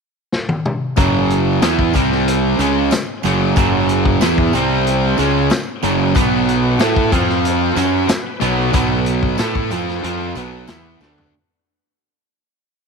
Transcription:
0.32 snare medium
0.49 high tom medium
0.65 mid tom medium
0.96 1.58 F#1 medium
0.96 1.61 F#2 medium
0.96 1.61 C#3 medium
0.96 1.61 F#3 loud
0.96 kick loud
0.96 closed hi-hat medium
0.96 tambourine medium
1.30 closed hi-hat medium
1.62 1.92 E2 loud
1.62 1.93 E3 medium
1.62 1.93 B3 loud
1.62 1.94 E4 medium
1.62 snare loud
1.62 closed hi-hat loud
1.62 tambourine loud
1.79 kick medium
1.93 2.55 C2 medium
1.93 2.58 C3 loud
1.93 2.59 G3 medium
1.93 2.59 C4 medium
1.93 kick medium
1.93 closed hi-hat medium
1.93 tambourine medium
2.12 snare soft
2.28 closed hi-hat loud
2.59 2.89 C#2 medium
2.59 2.91 C#3 medium
2.59 2.91 G#3 medium
2.59 2.92 C#4 loud
2.59 closed hi-hat medium
2.59 tambourine medium
2.91 muted overdriven electric guitar stroke medium
2.91 muted fingered electric bass stroke soft
2.91 muted distorted electric guitar stroke medium
2.91 snare loud
2.91 closed hi-hat loud
2.91 tambourine loud
3.23 3.54 F#1 loud
3.23 3.55 F#2 medium
3.23 3.56 C#3 loud
3.23 3.56 F#3 loud
3.23 closed hi-hat medium
3.23 tambourine medium
3.56 4.17 F#1 medium
3.56 4.20 F#2 medium
3.56 4.20 C#3 loud
3.56 4.21 F#3 loud
3.56 kick loud
3.56 closed hi-hat medium
3.56 tambourine medium
3.89 closed hi-hat medium
4.05 kick medium
4.21 4.51 E2 medium
4.21 4.53 E3 medium
4.21 4.53 B3 medium
4.21 4.53 E4 loud
4.21 snare loud
4.21 closed hi-hat medium
4.21 tambourine loud
4.38 kick medium
4.53 5.15 C2 medium
4.53 5.18 C3 medium
4.53 5.18 G3 loud
4.53 5.18 C4 medium
4.53 closed hi-hat medium
4.53 tambourine medium
4.87 closed hi-hat medium
5.18 5.49 C#2 loud
5.18 5.50 C#3 medium
5.18 5.50 G#3 medium
5.18 5.50 C#4 loud
5.18 closed hi-hat medium
5.18 tambourine medium
5.50 muted overdriven electric guitar stroke medium
5.50 muted distorted electric guitar stroke medium
5.50 muted fingered electric bass stroke soft
5.50 snare loud
5.50 closed hi-hat medium
5.50 tambourine medium
5.83 6.13 F#1 loud
5.83 6.15 F#2 loud
5.83 6.15 C#3 loud
5.83 6.14 F#3 loud
5.83 closed hi-hat medium
5.83 tambourine medium
6.15 6.76 B1 medium
6.15 6.79 B2 medium
6.15 6.79 F#3 medium
6.15 7.11 B3 medium
6.15 6.79 B3 loud
6.15 7.12 F#4 medium
6.15 7.11 B4 medium
6.15 7.12 F#5 medium
6.15 kick medium
6.15 closed hi-hat medium
6.15 tambourine medium
6.49 closed hi-hat medium
6.79 7.10 A2 loud
6.79 7.11 A3 medium
6.79 7.11 E4 loud
6.79 7.11 A4 medium
6.79 snare loud
6.79 closed hi-hat loud
6.79 tambourine medium
6.96 kick medium
7.11 7.73 F2 medium
7.11 7.76 F3 medium
7.11 7.76 C4 loud
7.11 7.76 C4 medium
7.11 7.76 F4 loud
7.11 7.76 F4 medium
7.11 7.76 C5 medium
7.11 7.76 F5 medium
7.11 kick medium
7.11 closed hi-hat medium
7.11 tambourine medium
7.29 snare soft
7.45 closed hi-hat medium
7.76 8.07 F#2 loud
7.76 8.08 F#3 medium
7.76 8.08 C#4 medium
7.76 8.09 F#4 medium
7.76 10.33 B4 medium
7.76 closed hi-hat medium
7.76 tambourine medium
8.08 muted distorted electric guitar stroke medium
8.08 muted fingered electric bass stroke soft
8.08 muted overdriven electric guitar stroke medium
8.08 snare loud
8.08 closed hi-hat loud
8.08 tambourine loud
8.40 8.72 B1 medium
8.40 8.72 B2 loud
8.40 8.73 F#3 loud
8.40 8.73 B3 loud
8.40 closed hi-hat medium
8.40 tambourine medium
8.73 9.35 B1 medium
8.73 9.38 B2 medium
8.73 9.38 F#3 loud
8.73 9.38 B3 loud
8.73 kick loud
8.73 closed hi-hat medium
8.73 tambourine medium
9.06 closed hi-hat medium
9.06 tambourine soft
9.23 kick medium
9.38 9.69 A2 medium
9.38 9.70 A3 medium
9.38 9.70 E4 medium
9.38 9.70 A4 medium
9.38 snare loud
9.38 closed hi-hat medium
9.38 tambourine loud
9.55 kick medium
9.70 10.02 F2 medium
9.70 10.02 F3 medium
9.70 10.02 C4 medium
9.70 10.03 F4 medium
9.70 closed hi-hat medium
9.70 tambourine medium
9.88 snare soft
10.03 10.34 F2 medium
10.03 10.35 F3 loud
10.03 10.35 C4 loud
10.03 10.36 F4 loud
10.03 closed hi-hat medium
10.35 10.66 B1 medium
10.35 10.67 B2 medium
10.35 10.68 F#3 loud
10.35 10.67 B3 loud
10.35 11.33 B3 medium
10.35 11.33 F#4 medium
10.35 11.33 B4 medium
10.35 11.33 F#5 medium
10.35 closed hi-hat medium
10.35 tambourine medium
10.68 10.99 E2 medium
10.68 11.00 E3 medium
10.68 11.00 B3 medium
10.68 11.00 E4 medium
10.68 snare loud
10.68 closed hi-hat medium
10.68 tambourine loud
11.00 11.31 D2 medium
11.00 11.32 D3 loud
11.00 11.33 A3 medium
11.00 11.33 D4 loud
11.00 snare medium
11.00 tambourine medium
11.18 floor tom medium

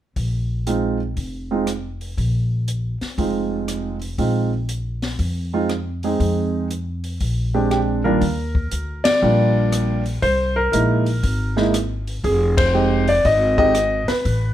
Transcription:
0.16 1.13 A#1 medium
0.16 kick soft
0.16 open hi-hat soft
0.67 0.97 G#3 soft
0.67 0.97 C4 soft
0.67 0.97 D#4 soft
0.67 0.97 F4 soft
0.67 closed hi-hat soft
1.17 2.13 F1 medium
1.17 kick soft
1.17 open hi-hat soft
1.51 1.66 G#3 soft
1.51 1.66 C4 soft
1.51 1.66 D#4 soft
1.51 1.66 F4 soft
1.67 cross-stick medium
1.67 closed hi-hat soft
2.01 open hi-hat soft
2.17 2.97 A#1 medium
2.17 kick soft
2.17 open hi-hat soft
2.68 closed hi-hat soft
3.01 muted upright bass stroke soft
3.01 snare soft
3.01 open hi-hat soft
3.18 4.14 F1 medium
3.18 3.95 G#3 soft
3.18 3.95 C4 soft
3.18 3.95 D#4 soft
3.18 3.95 F4 soft
3.18 kick soft
3.18 open hi-hat soft
3.68 cross-stick soft
3.68 closed hi-hat soft
4.02 open hi-hat soft
4.18 5.15 A#1 medium
4.18 4.49 G#3 soft
4.18 4.49 C4 soft
4.18 4.49 D#4 soft
4.18 4.49 F4 soft
4.18 kick soft
4.18 open hi-hat soft
4.69 closed hi-hat soft
5.02 snare soft
5.02 open hi-hat soft
5.19 6.16 F2 medium
5.19 kick soft
5.19 open hi-hat soft
5.53 5.68 G#3 soft
5.53 5.68 C4 soft
5.53 5.68 D#4 soft
5.53 5.68 F4 medium
5.69 cross-stick medium
5.69 closed hi-hat soft
6.03 6.67 G#3 soft
6.03 6.67 C4 soft
6.03 6.67 D#4 soft
6.03 6.68 G#4 medium
6.03 open hi-hat soft
6.20 7.17 F2 medium
6.20 kick soft
6.20 open hi-hat soft
6.71 closed hi-hat soft
7.04 open hi-hat soft
7.20 8.17 A#1 medium
7.20 kick soft
7.20 open hi-hat soft
7.54 8.01 G#3 soft
7.54 8.01 C4 soft
7.54 8.01 D4 soft
7.54 7.70 G4 medium
7.71 7.79 G4 medium
7.71 cross-stick medium
7.71 closed hi-hat soft
8.04 8.20 D#2 medium
8.04 8.20 G3 soft
8.04 8.20 A#3 medium
8.04 8.20 D4 medium
8.04 8.20 F4 medium
8.04 9.08 A#4 medium
8.21 8.68 D#2 medium
8.21 kick soft
8.21 open hi-hat soft
8.55 kick soft
8.71 9.19 D2 medium
8.71 closed hi-hat soft
9.04 10.01 D5 medium
9.04 snare medium
9.04 ride medium
9.22 10.19 A#1 medium
9.22 9.99 G3 medium
9.22 9.99 A#3 soft
9.22 10.00 D4 soft
9.22 10.00 F4 medium
9.72 cross-stick medium
9.72 closed hi-hat soft
10.06 open hi-hat soft
10.22 10.69 C2 medium
10.22 10.57 C5 loud
10.22 kick soft
10.22 open hi-hat soft
10.56 10.71 A#4 medium
10.72 11.20 A#1 medium
10.72 11.03 G#3 soft
10.72 11.03 A#3 soft
10.72 11.03 D#4 soft
10.72 11.03 E4 medium
10.72 11.52 A#4 medium
10.72 closed hi-hat soft
11.06 open hi-hat soft
11.23 12.20 G#1 medium
11.23 kick soft
11.23 open hi-hat soft
11.57 11.72 G#3 medium
11.57 11.72 A#3 medium
11.57 11.72 D#4 medium
11.57 11.72 E4 medium
11.57 snare soft
11.74 cross-stick medium
11.74 closed hi-hat soft
12.07 open hi-hat soft
12.24 13.21 F1 medium
12.24 12.55 G#4 medium
12.24 kick soft
12.24 open hi-hat soft
12.57 13.09 C5 medium
12.57 kick medium
12.57 ride medium
12.74 13.04 G#3 medium
12.74 13.04 C4 soft
12.74 13.05 D#4 soft
12.74 13.05 G4 medium
13.08 13.24 D5 medium
13.08 open hi-hat soft
13.25 14.05 G#1 medium
13.25 13.56 D#5 medium
13.25 kick soft
13.25 open hi-hat soft
13.58 13.73 G#3 medium
13.58 13.73 C4 medium
13.58 13.73 D#4 medium
13.58 13.73 G4 medium
13.58 14.05 D#5 loud
13.58 kick soft
13.75 cross-stick medium
13.75 closed hi-hat soft
14.08 14.54 B4 medium
14.08 muted upright bass stroke soft
14.08 snare soft
14.08 open hi-hat soft
14.25 14.54 A1 medium
14.25 kick soft
14.25 open hi-hat soft

